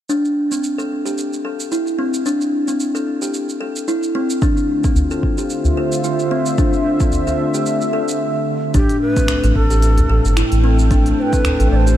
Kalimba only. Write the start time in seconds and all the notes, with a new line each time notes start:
0.09 D4
0.52 C4
0.78 A4
1.05 G4
1.45 A4
1.72 E4
1.99 C4
2.26 D4
2.68 C4
2.95 A4
3.22 G4
3.61 A4
3.88 E4
4.15 C4
4.42 D4
4.84 C4
5.11 A4
5.38 G4
5.77 A4
6.04 F4
6.31 C4
6.58 D4
7.00 C4
7.27 A4
7.54 G4
7.93 A4
8.74 D4
9.16 C4
9.44 A4
9.71 G4
10.10 A4
10.37 E4
10.64 C4
10.91 D4
11.33 C4
11.60 A4
11.87 G4